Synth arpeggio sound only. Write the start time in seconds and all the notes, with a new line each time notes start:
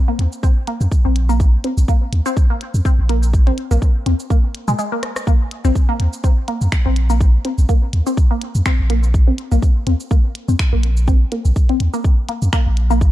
0.08 A#3
0.43 C4
0.68 A#3
1.05 C4
1.29 A#3
1.64 C4
1.88 A#3
2.26 C4
2.50 A#3
2.85 C4
3.09 A#3
3.47 C4
3.71 A#3
4.06 C4
4.30 A#3
4.68 G#3
4.79 G#3
4.92 A#3
5.27 A#3
5.65 C4
5.89 A#3
6.24 C4
6.48 A#3
6.86 C4
7.10 A#3
7.45 C4
7.69 A#3
8.06 C4
8.31 A#3
8.66 C4
8.90 A#3
9.28 C4
9.52 A#3
9.87 C4
10.11 A#3
10.48 C4
10.73 A#3
11.08 C4
11.32 A#3
11.69 C4
11.94 A#3
12.29 A#3
12.53 A#3
12.90 A#3